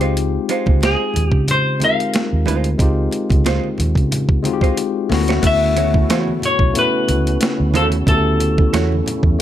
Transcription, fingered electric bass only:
0.00 0.37 C#2 medium
0.68 0.94 C#2 medium
1.16 1.30 D#2 medium
1.32 1.86 C#3 medium
2.33 2.44 D#2 medium
2.47 2.74 D2 medium
2.80 3.06 C#2 loud
3.31 3.58 C#2 medium
3.79 3.94 D#2 loud
3.96 4.50 C#3 medium
5.11 5.38 D2 loud
5.44 6.10 D2 loud
6.10 6.37 E2 medium
6.60 6.72 B1 medium
7.09 7.35 C#2 medium
7.60 7.74 D2 medium
7.74 8.01 D#2 medium
8.08 8.61 D2 medium
8.74 9.00 E2 medium
9.24 9.36 E2 medium

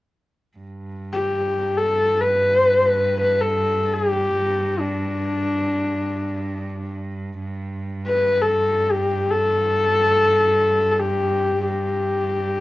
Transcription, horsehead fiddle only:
1.13 1.79 G4 medium
1.77 2.23 A4 medium
2.21 3.20 B4 medium
3.21 3.43 B4 medium
3.41 3.96 A4 medium
3.94 4.81 G4 medium
4.80 6.90 D4 medium
8.08 8.43 B4 medium
8.42 8.93 A4 medium
8.91 9.33 G4 medium
9.31 10.91 A4 medium
10.91 11.02 A4 soft
11.00 11.68 G4 medium
11.68 12.60 G4 medium

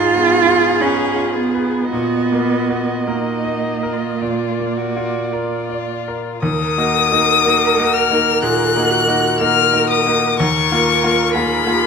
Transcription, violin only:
0.00 1.91 G#4 medium
1.92 2.93 F#4 medium
3.06 3.94 D#4 medium
3.93 4.79 F4 soft
4.78 5.35 F#4 medium
5.33 6.42 F4 soft
6.43 7.96 D#6 loud
7.94 8.43 F6 medium
8.43 9.39 F#6 medium
9.40 9.89 F6 loud
9.90 10.38 D#6 medium
10.40 11.33 C#6 medium
11.34 11.87 B5 loud

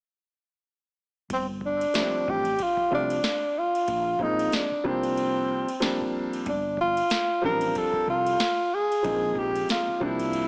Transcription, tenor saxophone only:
1.33 1.47 C4 medium
1.66 2.32 D4 loud
2.30 2.64 G4 medium
2.63 2.93 F4 medium
2.95 3.60 D4 medium
3.58 4.24 F4 loud
4.23 4.57 D#4 medium
4.55 4.86 D4 medium
4.87 6.11 C4 medium
6.49 6.78 D4 medium
6.81 7.40 F4 loud
7.45 7.79 A#4 medium
7.78 8.09 A4 medium
8.10 8.76 F4 loud
8.75 9.40 G#4 loud
9.39 9.70 G4 medium
9.71 10.05 F4 medium
10.03 10.48 E4 medium

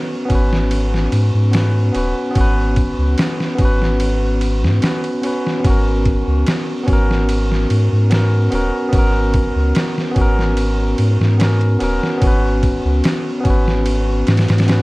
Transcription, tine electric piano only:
0.00 0.23 B3 medium
0.00 0.25 C#4 medium
0.00 0.27 F#4 medium
0.00 0.29 B4 loud
0.25 1.47 B3 loud
0.25 1.49 C#4 medium
0.32 1.51 F#4 medium
0.32 1.52 B4 medium
1.51 1.89 B3 medium
1.51 1.90 C#4 medium
1.51 1.90 F#4 medium
1.56 1.91 B4 medium
1.92 2.30 B3 medium
1.92 2.31 C#4 medium
1.92 2.32 F#4 medium
1.97 2.32 B4 medium
2.31 3.52 B3 loud
2.31 3.54 C#4 medium
2.38 3.55 F#4 medium
2.38 3.57 B4 loud
3.55 4.77 B3 medium
3.55 4.78 C#4 medium
3.62 4.80 F#4 medium
3.62 4.81 B4 loud
4.81 5.18 B3 medium
4.81 5.19 C#4 medium
4.81 5.20 F#4 medium
4.86 5.20 B4 medium
5.22 5.59 B3 medium
5.22 5.60 C#4 medium
5.22 5.61 F#4 medium
5.27 5.61 B4 medium
5.60 6.81 B3 medium
5.60 6.83 C#4 medium
5.67 6.84 F#4 medium
5.67 6.86 A#4 loud
6.83 8.05 B3 medium
6.83 8.07 C#4 medium
6.90 8.08 F#4 medium
6.90 8.10 A#4 loud
8.10 8.47 B3 medium
8.10 8.48 C#4 medium
8.10 8.48 F#4 medium
8.14 8.49 A#4 medium
8.50 8.88 B3 medium
8.50 8.89 C#4 medium
8.50 8.89 F#4 medium
8.55 8.90 A#4 medium
8.89 10.10 B3 medium
8.89 10.11 C#4 medium
8.95 10.13 F#4 medium
8.95 10.15 A#4 loud
10.11 11.33 B3 medium
10.11 11.35 C#4 medium
10.18 11.37 F#4 medium
10.18 11.38 A#4 loud
11.38 11.75 B3 medium
11.38 11.76 C#4 medium
11.38 11.77 F#4 medium
11.43 11.78 A#4 medium
11.79 12.16 B3 medium
11.79 12.17 C#4 medium
11.79 12.18 F#4 medium
11.84 12.19 A#4 medium
12.18 13.39 B3 medium
12.18 13.40 C#4 medium
12.24 13.42 F#4 medium
12.24 13.43 B4 loud
13.40 14.62 B3 loud
13.40 14.64 C#4 medium
13.47 14.65 F#4 medium
13.47 14.67 B4 loud
14.67 14.82 B3 medium
14.67 14.82 C#4 medium
14.67 14.82 F#4 medium
14.72 14.82 B4 medium

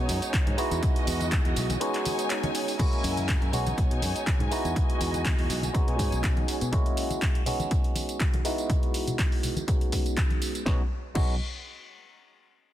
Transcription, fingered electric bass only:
0.09 0.18 F#2 loud
0.47 0.55 G#2 medium
0.71 0.79 E2 loud
1.07 1.39 E2 loud
1.45 1.53 E2 medium
1.56 1.75 B1 medium
3.04 3.36 F#2 loud
3.42 3.50 F#2 medium
3.53 3.72 B1 medium
3.78 3.87 B1 medium
3.91 3.99 B2 medium
4.02 4.12 F#2 medium
4.40 4.48 G#2 medium
4.65 4.73 E2 medium
5.01 5.33 E2 medium
5.39 5.47 E2 medium
5.50 5.68 B1 medium
5.88 5.99 B2 medium
5.99 6.09 G#2 loud
6.12 6.43 B1 medium
6.48 muted fingered electric bass stroke soft
6.62 6.70 B2 medium
10.66 10.81 B1 medium
11.15 11.38 B1 medium

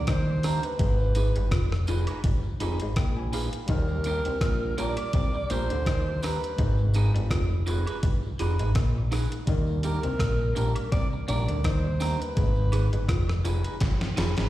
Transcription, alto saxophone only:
0.00 0.12 D5 loud
0.10 0.67 C5 loud
0.65 1.73 B4 medium
3.71 4.75 A#4 loud
4.78 5.52 D5 loud
5.51 6.24 C5 loud
6.23 6.95 B4 medium
9.84 10.88 A#4 loud
10.92 11.08 D5 loud
11.29 11.68 D5 loud
11.66 12.23 C5 medium
12.21 13.29 B4 medium

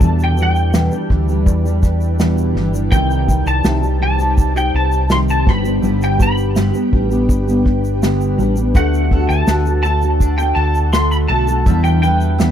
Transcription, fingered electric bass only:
0.00 0.88 E2 loud
1.10 1.46 D2 loud
1.46 2.52 E2 medium
2.55 2.89 G1 medium
2.92 3.43 C2 loud
3.46 3.63 C2 medium
3.65 4.70 C2 medium
4.74 5.48 C2 loud
5.47 5.81 G1 loud
5.83 6.71 G1 loud
6.93 7.26 A1 loud
7.29 8.34 G1 medium
8.38 8.75 A1 medium
8.75 9.26 D2 loud
9.29 9.46 D2 medium
9.47 10.53 D2 medium
10.56 11.26 D2 medium
11.29 11.63 B1 medium
11.66 12.51 E2 medium

